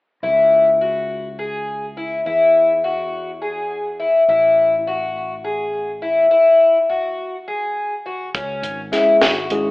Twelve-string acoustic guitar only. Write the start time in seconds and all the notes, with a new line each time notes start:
0.23 E4
0.81 F#4
1.39 G#4
1.97 E4
2.26 E4
2.84 F#4
3.42 G#4
4.00 E4
4.29 E4
4.87 F#4
5.44 G#4
6.02 E4
6.31 E4
6.90 F#4
7.48 G#4
8.06 F#4
8.35 C#4
8.93 E4
9.21 F#4